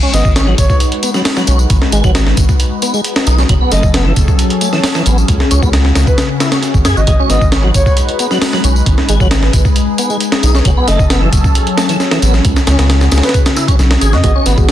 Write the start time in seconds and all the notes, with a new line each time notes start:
Already playing: G#3 D#4 F#4 B4
0.03 C#4
0.13 G#1 B3 D#5, snare, closed hi-hat, tambourine
0.25 G#1, kick, tambourine
0.36 C#4, snare, closed hi-hat, tambourine
0.48 F#3
0.58 G#1 C#5, kick, closed hi-hat, tambourine
0.69 C#5, kick, tambourine
0.80 closed hi-hat, tambourine
0.92 closed hi-hat
1.03 B3, closed hi-hat, tambourine
1.14 F#3, snare, tambourine
1.25 snare, open hi-hat, tambourine
1.37 F#3, snare, tambourine
1.47 B1 C#4, closed hi-hat, tambourine
1.59 tambourine
1.70 G#1, kick, closed hi-hat, tambourine
1.82 snare
1.92 G#1 G#3, closed hi-hat, tambourine
2.04 G#1 F#3, kick, tambourine
2.15 snare, closed hi-hat, tambourine
2.27 snare
2.37 G#1, kick, closed hi-hat, tambourine
2.49 kick, tambourine
2.60 closed hi-hat, tambourine
2.82 B3, closed hi-hat, tambourine
2.94 G#3, tambourine
3.04 closed hi-hat, tambourine
3.16 snare, tambourine
3.27 B1 D#4, closed hi-hat, tambourine
3.38 C#4, snare, tambourine
3.49 F#1 F#3 C#4 G#4 A4, kick, closed hi-hat, tambourine
3.61 B3
3.71 F#1 A3 D#5, snare, closed hi-hat, tambourine
3.83 F#1, kick, tambourine
3.94 B3, snare, closed hi-hat, tambourine
4.06 E3
4.16 F#1, kick, closed hi-hat, tambourine
4.28 kick, tambourine
4.39 closed hi-hat, tambourine
4.50 closed hi-hat
4.61 A3, closed hi-hat, tambourine
4.73 E3, snare, tambourine
4.84 snare, open hi-hat, tambourine
4.95 E3, snare, tambourine
5.06 A1 B3, closed hi-hat, tambourine
5.18 tambourine
5.28 C#2 C#3 F#4, kick, closed hi-hat, tambourine
5.40 snare
5.51 C#2 C#4, closed hi-hat, tambourine
5.62 C#2 B3, kick, tambourine
5.73 snare, closed hi-hat, tambourine
5.85 snare
5.95 C#2, snare, closed hi-hat, tambourine
6.07 B4, kick, tambourine
6.18 snare, closed hi-hat, tambourine
6.40 E4, snare, closed hi-hat, tambourine
6.52 C#4, snare, closed hi-hat, tambourine
6.63 snare, closed hi-hat, tambourine
6.74 G#1, kick, tambourine
6.85 F#2 G#4, snare, closed hi-hat, tambourine
6.96 G#1 F#4 D#5, tambourine
7.07 G#1 G#3 D#4 B4 D#5, kick, closed hi-hat, tambourine
7.20 C#4
7.30 G#1 B3 D#5, snare, closed hi-hat, tambourine
7.41 G#1, kick, tambourine
7.52 C#4, snare, closed hi-hat, tambourine
7.64 F#3
7.74 G#1 C#5, kick, closed hi-hat, tambourine
7.86 C#5, kick, tambourine
7.97 closed hi-hat, tambourine
8.09 closed hi-hat
8.19 B3, closed hi-hat, tambourine
8.31 F#3, snare, tambourine
8.42 snare, open hi-hat, tambourine
8.53 F#3, snare, tambourine
8.64 B1 C#4, closed hi-hat, tambourine
8.76 tambourine
8.86 G#1 G#4, kick, closed hi-hat, tambourine
8.98 snare
9.09 G#1 G#3, closed hi-hat, tambourine
9.20 G#1 F#3, kick, tambourine
9.31 snare, closed hi-hat, tambourine
9.43 snare
9.53 G#1, kick, closed hi-hat, tambourine
9.65 kick, tambourine
9.76 closed hi-hat, tambourine
9.98 B3, closed hi-hat, tambourine
10.10 G#3, tambourine
10.20 closed hi-hat, tambourine
10.32 snare, tambourine
10.43 B1 D#4, closed hi-hat, tambourine
10.55 C#4, snare, tambourine
10.65 F#1 F#3 C#4 A4, kick, closed hi-hat, tambourine
10.77 B3
10.88 F#1 A3 D#5, snare, closed hi-hat, tambourine
10.99 F#1, kick, tambourine
11.10 B3, snare, closed hi-hat, tambourine
11.22 E3
11.33 F#1, kick, closed hi-hat, tambourine
11.44 kick, tambourine
11.55 closed hi-hat, tambourine
11.67 closed hi-hat
11.78 A3, snare, tambourine
11.89 E3, closed hi-hat, tambourine
12.00 snare, tambourine
12.11 E3, snare, tambourine
12.22 A1 B3, closed hi-hat, tambourine
12.34 snare, tambourine
12.45 C#2 C#3 F#4 G#4, kick, closed hi-hat, tambourine
12.56 snare, tambourine
12.67 C#2 C#4, snare, closed hi-hat, tambourine
12.79 C#2 B3, snare, closed hi-hat, tambourine
12.89 snare, closed hi-hat, tambourine
13.01 snare, tambourine
13.12 C#2, snare, closed hi-hat, tambourine
13.18 snare, closed hi-hat
13.23 B4, snare, closed hi-hat, tambourine
13.29 snare, closed hi-hat
13.34 kick, closed hi-hat, tambourine
13.46 snare, closed hi-hat, tambourine
13.56 E4, snare, tambourine
13.68 B1 C#4, kick, closed hi-hat, tambourine
13.79 B1, snare, tambourine
13.91 snare, tambourine
14.01 G#1 G#4, closed hi-hat, tambourine
14.13 F#2 F#4 D#5, snare, tambourine
14.24 G#1 G#3 B3 D#4 F#4 G#4 B4 D#5, kick, closed hi-hat, tambourine
14.35 C#4
14.46 G#1 B3, snare, closed hi-hat, tambourine
14.58 G#1 B3 F#4 G#4, kick, tambourine
14.68 C#4, snare, closed hi-hat, tambourine